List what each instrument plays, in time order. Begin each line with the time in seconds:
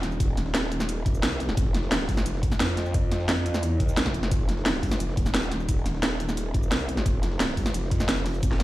Already playing: wobble bass D#1
0.03 snare, closed hi-hat
0.12 cabasa
0.20 kick, closed hi-hat, cabasa
0.37 snare, closed hi-hat, cabasa
0.46 snare
0.54 snare, closed hi-hat, cabasa
0.63 snare
0.72 closed hi-hat, cabasa
0.80 snare, cabasa
0.89 closed hi-hat, cabasa
1.06 wobble bass F1, kick, closed hi-hat
1.15 cabasa
1.23 wobble bass C2, snare, closed hi-hat, cabasa
1.32 cabasa
1.40 closed hi-hat
1.49 snare, cabasa
1.57 wobble bass F1, kick, closed hi-hat, cabasa
1.74 snare, closed hi-hat, cabasa
1.83 snare
1.91 snare, closed hi-hat, cabasa
2.09 wobble bass G1, kick, closed hi-hat, open hi-hat, cabasa
2.17 snare, cabasa
2.26 wobble bass F1, closed hi-hat, cabasa
2.34 snare
2.43 kick, closed hi-hat
2.52 snare, closed hi-hat, cabasa
2.60 wobble bass F2, snare, closed hi-hat, cabasa
2.69 closed hi-hat, cabasa
2.77 snare, closed hi-hat
2.86 cabasa
2.94 kick, closed hi-hat, cabasa
3.12 snare, closed hi-hat, cabasa
3.20 snare
3.29 snare, closed hi-hat, cabasa
3.37 snare
3.46 closed hi-hat, cabasa
3.54 wobble bass E2, snare, cabasa
3.63 closed hi-hat, cabasa
3.80 wobble bass D#2, kick, closed hi-hat
3.89 cabasa
3.97 wobble bass C2, snare, closed hi-hat, cabasa
4.06 kick, snare, cabasa
4.14 wobble bass F1, closed hi-hat
4.23 snare, cabasa
4.31 wobble bass F1, kick, closed hi-hat, cabasa
4.49 snare, closed hi-hat, cabasa
4.57 snare
4.66 snare, closed hi-hat, cabasa
4.83 wobble bass G1, kick, closed hi-hat, open hi-hat, cabasa
4.92 snare, cabasa
5.00 wobble bass F1, closed hi-hat, cabasa
5.09 snare
5.17 wobble bass D#1, kick, closed hi-hat
5.26 snare, closed hi-hat, cabasa
5.34 snare, closed hi-hat, cabasa
5.43 closed hi-hat, cabasa
5.52 snare, closed hi-hat
5.60 cabasa
5.69 kick, closed hi-hat, cabasa
5.86 snare, closed hi-hat, cabasa
5.94 snare
6.03 snare, closed hi-hat, cabasa
6.12 snare
6.20 closed hi-hat, cabasa
6.29 snare, cabasa
6.37 closed hi-hat, cabasa
6.54 wobble bass F1, kick, closed hi-hat
6.63 cabasa
6.72 wobble bass C2, snare, closed hi-hat, cabasa
6.80 cabasa
6.89 closed hi-hat
6.97 snare, cabasa
7.06 wobble bass F1, kick, closed hi-hat, cabasa
7.23 snare, closed hi-hat, cabasa
7.32 snare
7.40 snare, closed hi-hat, cabasa
7.57 wobble bass G1, kick, closed hi-hat, open hi-hat, cabasa
7.66 snare, cabasa
7.74 wobble bass F1, closed hi-hat, cabasa
7.83 snare
7.91 wobble bass F2, kick, snare, closed hi-hat
8.00 snare, cabasa
8.09 wobble bass F1, snare, closed hi-hat, cabasa
8.17 cabasa
8.26 snare, closed hi-hat, open hi-hat
8.34 cabasa
8.43 wobble bass F1, kick, closed hi-hat, cabasa
8.51 snare
8.60 snare, closed hi-hat, cabasa